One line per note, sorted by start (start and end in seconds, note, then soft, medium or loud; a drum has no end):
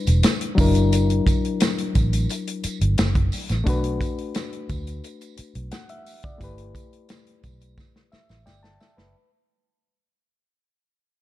0.00 0.52 G3 medium
0.00 0.53 D4 medium
0.00 0.54 E4 medium
0.00 0.55 B4 medium
0.07 0.22 E1 medium
0.07 closed hi-hat soft
0.07 tambourine soft
0.23 snare loud
0.23 closed hi-hat medium
0.23 tambourine medium
0.41 closed hi-hat medium
0.55 1.19 F#1 medium
0.55 3.27 F#3 medium
0.55 3.28 D4 medium
0.55 3.29 E4 medium
0.55 kick medium
0.55 open hi-hat medium
0.55 tambourine soft
0.61 3.29 A#4 medium
0.75 closed hi-hat medium
0.75 tambourine soft
0.92 closed hi-hat medium
0.92 tambourine soft
1.10 closed hi-hat soft
1.27 kick medium
1.27 closed hi-hat medium
1.27 tambourine soft
1.45 closed hi-hat soft
1.60 snare loud
1.60 closed hi-hat loud
1.60 tambourine medium
1.78 closed hi-hat soft
1.95 2.26 A1 medium
1.95 kick medium
1.95 closed hi-hat medium
1.95 tambourine soft
2.13 closed hi-hat soft
2.13 tambourine soft
2.29 closed hi-hat medium
2.29 tambourine soft
2.47 closed hi-hat soft
2.64 muted fingered electric bass stroke soft
2.64 closed hi-hat medium
2.64 tambourine soft
2.81 2.96 G1 medium
2.81 closed hi-hat soft
2.98 snare loud
2.98 closed hi-hat medium
2.98 tambourine medium
3.15 kick medium
3.15 closed hi-hat soft
3.32 open hi-hat medium
3.32 tambourine medium
3.49 3.65 A1 medium
3.49 snare soft
3.49 closed hi-hat medium
3.49 tambourine soft
3.64 6.35 A3 medium
3.64 6.36 D4 medium
3.64 6.37 F#4 medium
3.64 kick medium
3.64 closed hi-hat medium
3.64 tambourine soft
3.69 6.38 B4 medium
3.84 closed hi-hat soft
4.01 kick medium
4.01 closed hi-hat medium
4.01 tambourine soft
4.18 closed hi-hat soft
4.34 snare loud
4.34 closed hi-hat medium
4.34 tambourine medium
4.53 closed hi-hat soft
4.69 5.00 D2 medium
4.69 kick medium
4.69 closed hi-hat medium
4.69 tambourine soft
4.87 closed hi-hat soft
4.87 tambourine soft
5.04 closed hi-hat medium
5.04 tambourine soft
5.21 closed hi-hat soft
5.21 tambourine soft
5.37 muted fingered electric bass stroke soft
5.37 closed hi-hat medium
5.37 tambourine soft
5.55 5.70 B1 medium
5.55 closed hi-hat soft
5.71 5.88 F#5 medium
5.71 snare loud
5.71 closed hi-hat medium
5.71 tambourine medium
5.89 6.22 E5 medium
5.89 closed hi-hat medium
6.06 open hi-hat medium
6.06 tambourine medium
6.23 6.56 D5 medium
6.23 kick medium
6.23 closed hi-hat soft
6.23 tambourine soft
6.38 6.71 G1 loud
6.38 9.09 A3 medium
6.38 9.10 E4 medium
6.38 9.11 G4 medium
6.38 kick medium
6.38 closed hi-hat medium
6.38 tambourine soft
6.44 8.44 B4 medium
6.58 closed hi-hat medium
6.75 kick medium
6.75 closed hi-hat medium
6.75 tambourine soft
6.93 closed hi-hat soft
7.09 snare loud
7.09 closed hi-hat medium
7.09 tambourine medium
7.27 closed hi-hat soft
7.43 7.74 B1 medium
7.43 kick medium
7.43 closed hi-hat medium
7.43 tambourine soft
7.61 closed hi-hat soft
7.61 tambourine soft
7.78 kick loud
7.78 snare medium
7.78 tambourine soft
7.96 snare soft
8.12 8.44 E5 medium
8.12 muted fingered electric bass stroke soft
8.12 snare medium
8.12 tambourine soft
8.29 8.48 A1 medium
8.29 snare medium
8.29 tambourine soft
8.46 8.77 G1 medium
8.46 8.78 D5 medium
8.46 8.62 G5 medium
8.46 snare medium
8.46 tambourine medium
8.63 9.11 A5 medium
8.63 snare medium
8.80 8.97 E5 medium
8.80 snare medium
8.80 tambourine medium
8.97 9.13 F#1 medium
8.97 9.30 B4 medium
8.97 snare medium